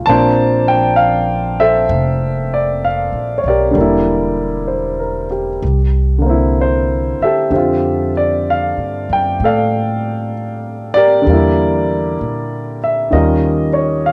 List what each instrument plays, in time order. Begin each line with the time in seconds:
Already playing: grand piano F4
0.06 upright bass A#1, grand piano F3 A#3 C4 D4 C5 D5 A5
0.68 grand piano G5
0.96 grand piano F5
1.60 grand piano A4 C5 E5
1.89 upright bass F1
2.54 grand piano D5
2.85 grand piano F5
3.13 upright bass A#1
3.38 grand piano C#5
3.44 upright bass B1
3.48 grand piano G4 A#4 D5
3.71 grand piano D3 G3
3.75 upright bass E1, grand piano A#3
3.80 grand piano E4
4.68 grand piano C5
4.99 grand piano A#4
5.31 grand piano G4
5.62 upright bass C2
6.19 grand piano D3 A#3
6.26 grand piano C4 E4
6.61 grand piano C5
7.20 grand piano E5, muted upright bass stroke
7.24 grand piano G4 A4
7.50 upright bass F2, grand piano D3 C4 G4
7.56 grand piano F4
8.17 grand piano D5
8.50 grand piano F5
8.77 upright bass G2
9.09 upright bass F#2, grand piano G5
9.40 upright bass A2
9.44 grand piano A4 D5 F5
10.94 grand piano G4 A#4 D5
11.22 grand piano D3
11.26 upright bass E2, grand piano G3 A#3
11.33 grand piano E4
12.21 upright bass A#2
12.84 grand piano E5
13.11 upright bass D#2, grand piano D#3 G3 C#4 F4 G4 A#4 D#5
13.73 grand piano C#5
14.06 grand piano F5